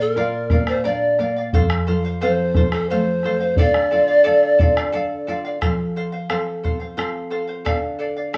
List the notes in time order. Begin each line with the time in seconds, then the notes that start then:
Already playing: A#2 A#3
0.00 A#4 D5 F5
0.16 F4 A#4 D5 F5, bombo rim
0.50 A#3 A#4 D5 F5, bombo rim, bombo low
0.67 C5 D5 F5, bombo rim
0.84 D4 A#4 D5 F5
1.19 A#3 A#4 D5 F5, bombo rim
1.36 D5 F5
1.53 F2 A4 C5 F5, bombo low
1.70 bombo rim
1.87 F3 A4 C5 F5
2.05 C5 F5
2.21 C4 A4 C5 F5, bombo rim
2.55 F3 A4 C5 F5, bombo rim, bombo low
2.71 A4 C5 F5, bombo rim
2.89 A3 A4 C5 F5
3.23 F3 A4 C5 F5, bombo rim
3.40 C5 F5
3.56 D3 A4 D5 F5, bombo low
3.74 bombo rim
3.91 F4 A4 D5 F5, bombo rim
4.08 D5 F5
4.24 A4 D5 F5, bombo rim
4.43 bombo rim
4.59 F4 A4 D5 F5, bombo low
4.77 D5 F5, bombo rim
4.92 A4 D5 F5
5.27 F4 A4 D5 F5, bombo rim
5.45 D5 F5
5.61 F3 A4 C5 F5, bombo rim, bombo low
5.96 A4 C5 F5
6.12 C5 F5
6.29 C4 F4 A4 C5 F5, bombo rim
6.64 A4 C5 F5, bombo low
6.80 C5 F5, bombo rim
6.97 C4 F4 A4 C5 F5, bombo rim
7.30 A4 C5 F5
7.47 C5 F5
7.65 D3 A4 D5 F5, bombo rim, bombo low
7.99 A4 D5 F5
8.17 D5 F5
8.33 D4 F4 A4 D5, bombo rim